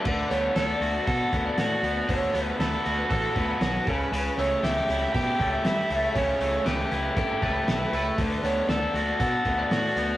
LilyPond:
<<
  \new Staff \with { instrumentName = "Lead electric guitar" } { \time 4/4 \key d \major \tempo 4 = 118 b'8 cis''8 d''4 fis''8. d''4~ d''16 | cis''4 b'4 a'8 b'4 b'8~ | b'8 cis''8 e''4 g''8. e''4~ e''16 | cis''4 b'4 a'8 b'4 b'8~ |
b'8 cis''8 d''4 fis''8. d''4~ d''16 | }
  \new Staff \with { instrumentName = "Overdriven electric guitar" } { \time 4/4 \key d \major d8 b8 a'8 fis'8 a'8 b8 fis'8 b8 | d8 b8 a'8 fis'8 a'8 b8 fis'8 cis8 | cis8 a8 g'8 e'8 g'8 a8 e'8 a8 | cis8 a8 g'8 e'8 g'8 a8 e'8 a8 |
d8 b8 a'8 fis'8 a'8 b8 fis'8 b8 | }
  \new Staff \with { instrumentName = "Picked electric bass" } { \clef bass \time 4/4 \key d \major d,8 d,8 d,8 d,8 b,8 d,8 a,8 d,8 | d,8 d,8 d,8 d,8 a,,8 d,8 b,,8 cis,8 | cis,8 cis,8 cis,8 cis,8 b,8 cis,8 g,8 cis,8 | cis,8 cis,8 cis,8 cis,8 g,,8 cis,8 b,,8 cis,8 |
d,8 d,8 d,8 d,8 b,8 d,8 a,8 d,8 | }
  \new DrumStaff \with { instrumentName = "Drums" } \drummode { \time 4/4 <cymc bd>8 hho8 <hho sn>8 hho8 <hho bd>8 <hho bd>8 <hho sn>8 hho8 | <hho bd>8 hho8 <hho sn>8 hho8 <hho bd>8 <hho bd>8 <hho sn>8 <hho bd>8 | hho8 hho8 <hho sn>8 hho8 <hho bd>8 <hho bd>8 <hho sn>8 hho8 | <hho bd>8 hho8 <hho sn>8 hho8 <hho bd>8 <hho bd>8 <hho sn>8 hho8 |
<hho bd>8 hho8 <hho sn>8 hho8 <hho bd>8 <hho bd>8 <hho sn>8 hho8 | }
>>